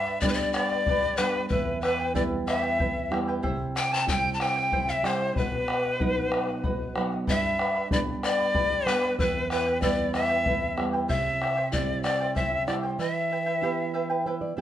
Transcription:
Already playing: nylon-string guitar G2, pan flute E5, quena E5
0.06 charango B4 D5 B5
0.20 nylon-string guitar G3 B3 D4, charango B4 D5 G5, pan flute D5, quena D5, bombo low
0.25 pan flute B4, charango B5
0.30 quena B4, pan flute D5
0.36 quena D5
0.53 charango B4 D5 G5 B5, pan flute D5, quena D5, bombo rim
0.71 charango B4 D5 B5
0.86 charango G4 B4 D5 G5 B5, bombo rim, bombo low
1.17 nylon-string guitar G3 B3 D4, pan flute B4, quena B4, charango B4 D5 G5, bombo rim
1.21 charango B5
1.36 charango B4 D5 B5
1.49 nylon-string guitar E2, charango E4 B4 E5, pan flute B4, quena B4, bombo low
1.53 charango G5
1.81 charango E4 B4 E5 G5, pan flute B4, quena B4, bombo rim
1.99 charango E4 B4 G5
2.14 nylon-string guitar G3 B3 E4, charango E4 G4 B4 E5 G5, quena D5, pan flute D5, bombo low
2.47 charango E4 B4 E5 G5, quena D#5, pan flute E5, bombo rim
2.58 quena E5
2.62 charango E4 B4 G5
2.78 charango E4 B4 E5 G5, bombo rim, bombo low
3.11 nylon-string guitar G3 B3 E4, charango E4 B4 E5 G5, bombo rim
3.28 charango E4 B4 G5
3.43 nylon-string guitar C3, charango E4 G4 C5 E5 G5, bombo low
3.75 charango E4 C5 E5 G5, quena G5, pan flute G5, bombo rim
3.92 charango E4 C5 G5, quena A5, pan flute A5
4.07 nylon-string guitar G3 C4 E4, charango E4 C5 E5 G5, pan flute G5, quena G5, bombo low
4.34 quena A5, pan flute A5
4.40 charango E4 C5 E5 G5, pan flute G5, quena G5, bombo rim
4.56 charango E4 C5 G5
4.72 charango E4 G4 C5 E5 G5, bombo rim, bombo low
4.89 pan flute E5, quena E5
5.03 nylon-string guitar G3 C4 E4, charango E4 C5 E5 G5, pan flute C5, quena C5, bombo rim
5.21 charango E4 C5 G5
5.36 nylon-string guitar B2, charango B4 D#5 F#5, quena B4, pan flute B4, bombo rim, bombo low
5.53 bombo rim
5.68 charango B4 D#5 F#5, bombo rim
5.85 charango D#5 F#5
6.00 nylon-string guitar F#3 B3 D#4, charango B4 D#5 F#5, bombo low
6.16 bombo rim
6.32 charango B4 D#5 F#5, bombo rim
6.48 charango D#5 F#5, bombo rim
6.64 charango B4 D#5 F#5, bombo low
6.95 nylon-string guitar F#3 B3 D#4, charango B4 D#5 F#5, bombo rim
7.12 charango D#5 F#5
7.27 nylon-string guitar G2, charango G4 B4 D5 G5 B5, quena E5, pan flute E5, bombo low
7.59 charango B4 D5 G5 B5, bombo rim
7.75 charango B4 D5 B5
7.90 nylon-string guitar G3 B3 D4, charango B4 D5 G5 B5, quena D5, pan flute D5, bombo low
8.23 charango B4 D5 G5 B5, quena D5, pan flute D5, bombo rim
8.39 charango B4 D5 B5
8.54 charango G4 B4 D5 G5 B5, bombo rim, bombo low
8.86 nylon-string guitar G3 B3 D4, charango B4 D5 G5 B5, quena B4, pan flute B4, bombo rim
9.03 charango B4 D5 B5
9.18 nylon-string guitar E2, charango E4 B4 E5 G5, quena B4, pan flute B4, bombo low
9.50 charango E4 B4 E5 G5, pan flute B4, quena B4, bombo rim
9.66 charango E4 B4 G5
9.81 nylon-string guitar G3 B3 E4, charango E4 G4 B4 E5 G5, pan flute D5, quena D5, bombo low
10.14 charango E4 B4 E5 G5, pan flute E5, quena E5, bombo rim
10.29 charango E4 B4 G5
10.46 charango E4 B4 E5 G5, bombo rim, bombo low
10.77 nylon-string guitar G3 B3 E4, charango E4 B4 E5 G5, bombo rim
10.93 charango E4 B4 G5
11.08 nylon-string guitar C3, charango E4 G4 C5 E5 G5, quena E5, pan flute E5, bombo low
11.41 charango E4 C5 E5 G5, bombo rim
11.57 charango E4 C5 G5
11.72 nylon-string guitar G3 C4 E4, charango E4 C5 E5 G5, pan flute D5, quena D5, bombo low
12.03 charango E4 C5 E5 G5, pan flute D5, quena D5, bombo rim
12.20 charango E4 C5 G5
12.35 charango E4 G4 C5 E5 G5, quena E5, pan flute E5, bombo rim, bombo low
12.67 nylon-string guitar G3 C4 E4, charango E4 C5 E5 G5, quena D5, pan flute D5, bombo rim
12.83 charango E4 C5 G5
12.99 nylon-string guitar E3, charango E4 B4 E5 G5, quena E5, pan flute E5
13.31 charango E4 B4 E5 G5
13.46 charango E4 B4 G5
13.62 nylon-string guitar B3 E4 G4, charango E4 G4 B4 E5 G5
13.94 charango E4 B4 E5 G5
14.10 charango E4 B4 G5
14.26 charango E4 B4 E5 G5, nylon-string guitar C5
14.41 nylon-string guitar D5
14.57 nylon-string guitar B3 E4 G4, charango E4 E5

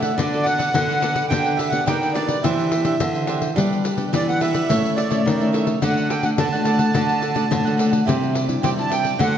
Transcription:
Already playing: nylon-string guitar A2 A3 E4 F#4, accordion E5
0.02 cavaquinho A4 D5 F#5, pandeiro
0.16 nylon-string guitar D3 B3 F#4 A4, cavaquinho D4 A4 B4, accordion D5, pandeiro
0.20 cavaquinho D5
0.34 nylon-string guitar B3 F#4 A4, pandeiro
0.43 cavaquinho D4 A4 B4, accordion F#5, pandeiro
0.47 cavaquinho D5
0.58 cavaquinho D4 A4 B4 D5, pandeiro
0.75 nylon-string guitar D3 B3 F#4 A4, pandeiro
0.88 cavaquinho A4 B4 D5, pandeiro
1.01 nylon-string guitar B3 F#4 A4, cavaquinho D4 A4 B4 D5, pandeiro
1.14 cavaquinho A4 B4 D5, pandeiro
1.28 nylon-string guitar D3 B3, cavaquinho D4 G4 B4 D5, accordion G5, pandeiro
1.33 nylon-string guitar D4 G4
1.46 pandeiro
1.56 cavaquinho D4 G4 B4 D5, accordion E5, pandeiro
1.69 nylon-string guitar B3, accordion F#5, pandeiro
1.73 nylon-string guitar D4 G4
1.86 nylon-string guitar D#3, cavaquinho D4 G4 B4 D5, accordion G5, pandeiro
2.01 cavaquinho G4 B4 D5, pandeiro
2.13 nylon-string guitar B3 D4 G4, cavaquinho D4 G4 B4 D5, accordion D5, pandeiro
2.28 cavaquinho G4 B4 D5, pandeiro
2.42 nylon-string guitar E3 C4 D4 G4, cavaquinho D4 G4 C5 E5, accordion E5, pandeiro
2.59 pandeiro
2.72 cavaquinho D4 G4 C5 E5, pandeiro
2.84 nylon-string guitar C4 D4 G4, cavaquinho D4 G4 C5 E5, pandeiro
2.99 nylon-string guitar D3 E3, pandeiro
3.14 cavaquinho G4 C5 E5, pandeiro
3.27 nylon-string guitar C4 D4 G4, cavaquinho D4 G4 C5 E5, pandeiro
3.40 cavaquinho G4 C5 E5, pandeiro
3.56 nylon-string guitar G3 B3 D4 G4, cavaquinho D4 G4 B4 D5, pandeiro
3.73 pandeiro
3.84 cavaquinho D4 G4 B4 D5, pandeiro
3.97 nylon-string guitar B3 D4 G4, pandeiro
4.13 nylon-string guitar D3 E3, cavaquinho D4 G4 B4 D5, accordion D5, pandeiro
4.27 nylon-string guitar B3 D4 G4, cavaquinho G4 B4 D5, accordion F#5, pandeiro
4.41 cavaquinho D4 G4 B4 D5, accordion E5, pandeiro
4.54 cavaquinho G4 B4 D5, pandeiro
4.69 nylon-string guitar A2 A3 C#4 E4, cavaquinho E4 A4 C#5 E5, pandeiro
4.85 pandeiro
4.96 cavaquinho E4 A4 C#5 E5, accordion D5, pandeiro
5.10 nylon-string guitar A3 C#4 E4, cavaquinho E4 A4 C#5 E5, pandeiro
5.26 nylon-string guitar D#3, pandeiro
5.40 nylon-string guitar A3 C#4, cavaquinho A4 C#5 E5, pandeiro
5.52 cavaquinho E4 A4 C#5 E5, pandeiro
5.67 cavaquinho A4 C#5 E5, pandeiro
5.82 nylon-string guitar D3 A3 D4 F#4, cavaquinho D4 A4 D5 F#5, accordion F#5, pandeiro
5.97 pandeiro
6.09 cavaquinho D4 A4 D5 F#5, accordion G5, pandeiro
6.23 nylon-string guitar A3 D4 F#4, accordion F#5, pandeiro
6.38 nylon-string guitar A2 D3, cavaquinho D4 A4 D5 F#5, accordion A5, pandeiro
6.52 nylon-string guitar A3 D4 F#4, cavaquinho A4 D5 F#5, pandeiro
6.65 cavaquinho D4 A4 D5 F#5, pandeiro
6.79 cavaquinho A4 D5 F#5, pandeiro
6.93 nylon-string guitar D3 A3 D4 F#4, cavaquinho D4 A4 D5 F#5, pandeiro
7.09 pandeiro
7.21 cavaquinho D4 A4 D5 F#5, pandeiro
7.34 nylon-string guitar A3 D4 F#4, cavaquinho D4 A4 D5 F#5, pandeiro
7.51 nylon-string guitar A2 D3, pandeiro
7.65 nylon-string guitar A3 D4 F#4, cavaquinho A4 D5 F#5, pandeiro
7.77 cavaquinho D4 A4 D5 F#5, pandeiro
7.91 cavaquinho A4 D5 F#5, pandeiro
8.06 nylon-string guitar C3 G3 D4 E4, cavaquinho E4 G4 C5 D5, pandeiro
8.23 pandeiro
8.33 cavaquinho E4 G4 C5 D5, pandeiro
8.47 nylon-string guitar G3 D4 E4, pandeiro
8.62 nylon-string guitar C3 G3, cavaquinho E4 G4 C5 D5, accordion G5, pandeiro
8.77 nylon-string guitar G3 D4 E4, cavaquinho G4 C5 D5, accordion A5, pandeiro
8.90 cavaquinho E4 G4 C5 D5, accordion G5, pandeiro
9.03 cavaquinho G4 C5 D5, pandeiro
9.18 nylon-string guitar D3 A3 C4 F#4, cavaquinho F#4 A4 C5 D5, accordion F#5, pandeiro
9.35 pandeiro

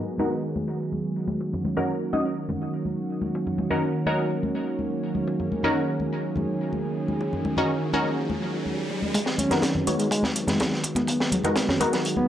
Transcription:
Already playing: analog synth pad D#3 F#3 G#3 B3 G#4
0.18 synth stab G#2 B3 D#4 F#4 A#4, high conga
0.56 high conga
0.68 high bongo
0.92 high conga
1.28 high conga
1.40 analog synth pad D#3 A#3 C#4 F#4, high bongo
1.53 low conga
1.65 high conga
1.77 synth stab C#4 D#4 F#4 A#4, low conga
2.13 synth stab C#4 D#4 F#4 D#5, high conga
2.49 high conga, low conga
2.85 high conga
3.22 high conga
3.35 high bongo
3.47 low conga
3.58 high bongo, high conga
3.70 synth stab C#4 D#4 F#4 A#4, low conga
4.06 synth stab C#4 D#4 F#4 A#4, high conga
4.43 high conga
4.79 high conga
5.15 high conga
5.27 analog synth pad G#4, high bongo, riser
5.40 low conga
5.52 high conga
5.63 synth stab C#4 D#4 F#4 A#4, low conga
6.00 high conga
6.36 high conga, low conga
6.73 high conga
7.08 high conga
7.21 high bongo
7.33 low conga
7.45 high bongo, high conga
7.57 synth stab C#4 D#4 F#4 A#4, low conga
7.93 synth stab C#4 D#4 F#4 A#4, high conga
8.30 high conga
8.42 high bongo
8.66 high conga
8.90 high bongo
9.02 high conga
9.14 analog synth pad D#3 F#3 G#3 B3 F#4, reed electric piano G#3, kick, closed hi-hat
9.26 snare
9.38 reed electric piano C#4, closed hi-hat, high conga
9.51 synth stab B3 D#4 F#4 A#4, snare, closed hi-hat, low conga
9.62 snare, closed hi-hat
9.75 low conga
9.87 synth stab B3 D#4 F#4 C#5, closed hi-hat, high conga
9.99 reed electric piano G#3, closed hi-hat
10.11 reed electric piano G#3, kick, closed hi-hat
10.23 snare, high conga
10.36 closed hi-hat
10.47 reed electric piano G#3, snare, closed hi-hat, low conga
10.60 snare, closed hi-hat, high conga
10.73 snare
10.84 kick, closed hi-hat
10.95 reed electric piano B3, kick, closed hi-hat, high conga
11.08 kick, closed hi-hat
11.20 snare
11.32 reed electric piano F#3, closed hi-hat, high conga
11.44 reed electric piano G#3, synth stab B3 D#4 F#4 A#4, kick, closed hi-hat, low conga
11.56 snare, closed hi-hat
11.69 reed electric piano C#4, snare, low conga
11.80 synth stab B3 D#4 F#4 A#4, kick, closed hi-hat, high conga
11.93 reed electric piano F#3, snare, closed hi-hat
12.05 closed hi-hat
12.17 reed electric piano B3, high conga

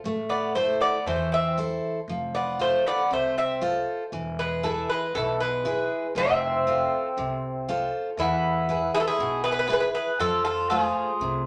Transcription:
0.04 upright bass A1, steel-string acoustic guitar A3
0.29 bouzouki B3 D5
0.55 bouzouki A3 C5, steel-string acoustic guitar E4 A4 C5
0.81 bouzouki B3 D5
1.06 upright bass E2, steel-string acoustic guitar E3, bouzouki A3 C5
1.32 bouzouki C4 E5
1.58 steel-string acoustic guitar E4 A4 C5
2.08 upright bass F1, steel-string acoustic guitar F3
2.35 bouzouki B3 D5
2.59 bouzouki A3 C5, steel-string acoustic guitar F4 A4 C5
2.87 bouzouki B3 D5
3.11 upright bass C2, steel-string acoustic guitar C3, bouzouki A3 C5
3.38 bouzouki C4 E5
3.61 steel-string acoustic guitar F4 A4 C5
4.12 upright bass E1, steel-string acoustic guitar E3
4.39 bouzouki G#3 B4
4.63 bouzouki E3 A4, steel-string acoustic guitar E4 G#4 B4
4.90 bouzouki G#3 B4
5.14 upright bass B1, steel-string acoustic guitar B2, bouzouki E3 A4
5.40 bouzouki G#3 B4
5.65 steel-string acoustic guitar E4 G#4 B4
6.15 upright bass F1, steel-string acoustic guitar F3, bouzouki C4 E5
6.67 steel-string acoustic guitar F4 A4 C5
7.17 upright bass C2, steel-string acoustic guitar C3
7.69 steel-string acoustic guitar F4 A4 C5
8.17 upright bass E2, steel-string acoustic guitar E3, bouzouki B3 E4
8.69 steel-string acoustic guitar E4 G#4 B4
8.95 bouzouki E4 G#4
9.00 bouzouki F4 A4
9.07 bouzouki E4 G#4
9.19 upright bass B1, steel-string acoustic guitar B2
9.44 bouzouki G#4 B4
9.51 bouzouki G#4 B4
9.59 bouzouki G#4 B4
9.66 steel-string acoustic guitar E4 G#4 B4, bouzouki G#4 B4
9.73 bouzouki G#4 B4
9.80 bouzouki G#4 B4
9.95 bouzouki G#4 B4
10.19 upright bass F2, steel-string acoustic guitar F3, bouzouki F4 A4
10.45 bouzouki F4 A4
10.70 steel-string acoustic guitar A3 F4 C5, bouzouki F4 G#4
11.20 upright bass C2, steel-string acoustic guitar C3

